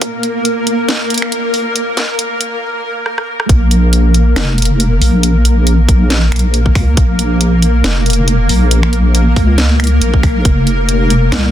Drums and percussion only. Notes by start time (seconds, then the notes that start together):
0.01 kick, closed hi-hat
0.23 closed hi-hat
0.45 closed hi-hat
0.67 closed hi-hat
0.89 snare, closed hi-hat
1.10 closed hi-hat
1.14 closed hi-hat
1.18 closed hi-hat
1.22 finger snap
1.32 closed hi-hat
1.54 open hi-hat
1.76 closed hi-hat
1.97 snare, closed hi-hat
2.19 closed hi-hat
2.41 closed hi-hat
3.06 cross-stick
3.18 cross-stick
3.40 cross-stick
3.49 kick, closed hi-hat
3.71 closed hi-hat
3.93 closed hi-hat
4.14 closed hi-hat
4.36 finger snap, snare, closed hi-hat
4.58 closed hi-hat
4.62 closed hi-hat
4.65 closed hi-hat
4.80 closed hi-hat
5.02 open hi-hat
5.23 closed hi-hat
5.45 closed hi-hat
5.67 closed hi-hat
5.89 kick, closed hi-hat
6.10 snare, closed hi-hat
6.32 finger snap, closed hi-hat
6.36 closed hi-hat
6.39 closed hi-hat
6.54 closed hi-hat
6.66 kick
6.75 finger snap, kick, open hi-hat
6.97 kick, closed hi-hat
7.19 closed hi-hat
7.41 closed hi-hat
7.62 closed hi-hat
7.84 finger snap, snare, closed hi-hat
8.06 closed hi-hat
8.10 closed hi-hat
8.13 closed hi-hat
8.28 closed hi-hat
8.49 open hi-hat
8.71 closed hi-hat
8.83 finger snap
8.93 closed hi-hat
9.15 closed hi-hat
9.36 kick, open hi-hat
9.58 snare, closed hi-hat
9.80 finger snap, closed hi-hat
9.84 closed hi-hat
9.87 closed hi-hat
10.01 closed hi-hat
10.14 kick
10.23 finger snap, kick, open hi-hat
10.45 kick, closed hi-hat
10.67 closed hi-hat
10.89 closed hi-hat
11.10 closed hi-hat
11.32 finger snap, snare, closed hi-hat